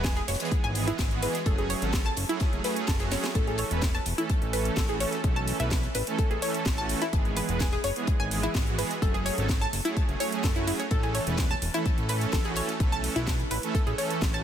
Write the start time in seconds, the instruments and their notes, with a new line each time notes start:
Already playing: analog synth bass E1, supersaw synth E3 G#3 B3 B4
0.04 synth pluck G#4, kick, snare, closed hi-hat
0.17 synth pluck G#4, snare, closed hi-hat
0.28 analog synth bass F#1, synth pluck C#5, snare, closed hi-hat, open hi-hat
0.34 snare, closed hi-hat
0.40 supersaw synth E3 G#3 B3 G#4, snare, closed hi-hat
0.45 snare, closed hi-hat
0.51 kick, closed hi-hat
0.64 analog synth bass G#1, synth pluck G#5, closed hi-hat
0.75 supersaw synth E3 G#3 B3 G#4, closed hi-hat, open hi-hat
0.88 synth pluck E4, closed hi-hat
0.99 analog synth bass G#1, kick, snare, closed hi-hat
1.11 supersaw synth E3 G#3 B3 F#4, closed hi-hat
1.23 supersaw synth E3 G#3 B3 G#4, synth pluck B4, closed hi-hat, open hi-hat
1.34 snare, closed hi-hat
1.46 analog synth bass F#1, supersaw synth F#3 A3 C#4 G#4, synth pluck A4, kick, closed hi-hat
1.58 synth pluck G#4, closed hi-hat
1.70 synth pluck C#5, closed hi-hat, open hi-hat
1.82 analog synth bass G#1, supersaw synth F#3 A3 C#4 A4, snare, closed hi-hat
1.93 kick, snare, closed hi-hat
2.06 synth pluck A5, closed hi-hat
2.17 analog synth bass F#1, closed hi-hat, open hi-hat
2.29 supersaw synth F#3 A3 C#4 G#4, synth pluck E4, closed hi-hat
2.40 kick, snare, closed hi-hat
2.53 analog synth bass F#1, closed hi-hat
2.64 supersaw synth F#3 A3 C#4 G#4, synth pluck B4, snare, closed hi-hat, open hi-hat
2.76 closed hi-hat
2.87 analog synth bass F#1, synth pluck A4, kick, snare, closed hi-hat
3.00 supersaw synth F#3 A3 C#4 F#4, synth pluck G#4, snare, closed hi-hat
3.12 supersaw synth F#3 A3 C#4 G#4, synth pluck C#5, snare, closed hi-hat, open hi-hat
3.24 snare, closed hi-hat
3.35 analog synth bass A1, supersaw synth E3 A3 C#4 A4, synth pluck A4, kick, closed hi-hat
3.47 synth pluck G#4, closed hi-hat
3.58 synth pluck C#5, closed hi-hat, open hi-hat
3.71 analog synth bass E1, supersaw synth E3 A3 C#4 B4, closed hi-hat
3.82 kick, snare, closed hi-hat
3.94 synth pluck A5, snare, closed hi-hat
4.06 analog synth bass E1, closed hi-hat, open hi-hat
4.18 supersaw synth E3 A3 C#4 A4, synth pluck E4, closed hi-hat
4.30 kick, closed hi-hat
4.42 analog synth bass A1, closed hi-hat
4.53 supersaw synth E3 A3 C#4 A4, synth pluck B4, closed hi-hat, open hi-hat
4.65 closed hi-hat
4.77 analog synth bass A1, synth pluck A4, kick, snare, closed hi-hat
4.89 supersaw synth E3 A3 C#4 F#4, synth pluck G#4, closed hi-hat
5.00 supersaw synth E3 A3 C#4 A4, synth pluck C#5, closed hi-hat, open hi-hat
5.13 snare, closed hi-hat
5.24 analog synth bass B1, supersaw synth E3 A3 C#4 A4, kick, closed hi-hat
5.36 synth pluck A5, closed hi-hat
5.47 closed hi-hat, open hi-hat
5.59 analog synth bass B1, supersaw synth E3 A3 C#4 B4, synth pluck E4, snare, closed hi-hat
5.71 kick, snare, closed hi-hat
5.83 closed hi-hat
5.95 analog synth bass A1, synth pluck B4, closed hi-hat, open hi-hat
6.07 supersaw synth E3 A3 C#4 A4, closed hi-hat
6.19 synth pluck A4, kick, closed hi-hat
6.31 analog synth bass A1, synth pluck G#4, closed hi-hat
6.42 supersaw synth E3 A3 C#4 A4, synth pluck C#5, closed hi-hat, open hi-hat
6.54 closed hi-hat
6.66 analog synth bass A1, kick, snare, closed hi-hat
6.78 supersaw synth E3 A3 C#4 F#4, synth pluck A5, closed hi-hat
6.89 supersaw synth E3 A3 C#4 A4, closed hi-hat, open hi-hat
7.02 synth pluck E4, snare, closed hi-hat
7.13 analog synth bass G#1, supersaw synth E3 G#3 B3 G#4, kick, closed hi-hat
7.25 closed hi-hat
7.36 synth pluck B4, closed hi-hat, open hi-hat
7.49 analog synth bass E1, supersaw synth E3 G#3 B3 B4, closed hi-hat
7.60 synth pluck G#4, kick, snare, closed hi-hat
7.72 synth pluck G#4, snare, closed hi-hat
7.84 analog synth bass F#1, synth pluck C#5, closed hi-hat, open hi-hat
7.96 supersaw synth E3 G#3 B3 G#4, closed hi-hat
8.07 kick, closed hi-hat
8.20 analog synth bass G#1, synth pluck G#5, closed hi-hat
8.31 supersaw synth E3 G#3 B3 G#4, closed hi-hat, open hi-hat
8.43 synth pluck E4, closed hi-hat
8.55 analog synth bass G#1, kick, snare, closed hi-hat
8.67 supersaw synth E3 G#3 B3 F#4, closed hi-hat
8.78 supersaw synth E3 G#3 B3 G#4, synth pluck B4, closed hi-hat, open hi-hat
8.91 snare, closed hi-hat
9.02 analog synth bass F#1, supersaw synth F#3 A3 C#4 G#4, synth pluck A4, kick, closed hi-hat
9.14 synth pluck G#4, closed hi-hat
9.26 synth pluck C#5, closed hi-hat, open hi-hat
9.38 analog synth bass G#1, supersaw synth F#3 A3 C#4 A4, snare, closed hi-hat
9.49 kick, snare, closed hi-hat
9.61 synth pluck A5, closed hi-hat
9.73 analog synth bass F#1, closed hi-hat, open hi-hat
9.85 supersaw synth F#3 A3 C#4 G#4, synth pluck E4, closed hi-hat
9.97 kick, closed hi-hat
10.09 analog synth bass F#1, closed hi-hat
10.20 supersaw synth F#3 A3 C#4 G#4, synth pluck C#5, closed hi-hat, open hi-hat
10.32 closed hi-hat
10.44 analog synth bass F#1, synth pluck A4, kick, snare, closed hi-hat
10.56 supersaw synth F#3 A3 C#4 F#4, synth pluck E4, closed hi-hat
10.67 supersaw synth F#3 A3 C#4 G#4, synth pluck E4, closed hi-hat, open hi-hat
10.79 synth pluck C#5, snare, closed hi-hat
10.91 analog synth bass A1, supersaw synth E3 A3 C#4 A4, synth pluck A4, kick, closed hi-hat
11.03 synth pluck G#4, closed hi-hat
11.15 synth pluck C#5, closed hi-hat, open hi-hat
11.27 analog synth bass E1, supersaw synth E3 A3 C#4 B4, closed hi-hat
11.38 kick, snare, closed hi-hat
11.50 synth pluck A5, snare, closed hi-hat
11.62 analog synth bass E1, closed hi-hat, open hi-hat
11.74 supersaw synth E3 A3 C#4 A4, synth pluck E4, closed hi-hat
11.86 kick, closed hi-hat
11.98 analog synth bass A1, closed hi-hat
12.09 supersaw synth E3 A3 C#4 A4, synth pluck B4, closed hi-hat, open hi-hat
12.21 closed hi-hat
12.33 analog synth bass A1, synth pluck A4, kick, snare, closed hi-hat
12.45 supersaw synth E3 A3 C#4 F#4, synth pluck G#4, closed hi-hat
12.56 supersaw synth E3 A3 C#4 A4, synth pluck C#5, closed hi-hat, open hi-hat
12.69 snare, closed hi-hat
12.80 analog synth bass B1, supersaw synth E3 A3 C#4 A4, kick, closed hi-hat
12.92 synth pluck A5, closed hi-hat
13.04 closed hi-hat, open hi-hat
13.16 analog synth bass B1, supersaw synth E3 A3 C#4 B4, synth pluck E4, snare, closed hi-hat
13.27 kick, snare, closed hi-hat
13.40 closed hi-hat
13.51 analog synth bass A1, synth pluck B4, closed hi-hat, open hi-hat
13.63 supersaw synth E3 A3 C#4 A4, closed hi-hat
13.75 synth pluck A4, kick, closed hi-hat
13.87 analog synth bass A1, synth pluck G#4, closed hi-hat
13.98 supersaw synth E3 A3 C#4 A4, synth pluck C#5, closed hi-hat, open hi-hat
14.11 closed hi-hat
14.22 analog synth bass A1, kick, snare, closed hi-hat
14.34 supersaw synth E3 A3 C#4 F#4, synth pluck A5, closed hi-hat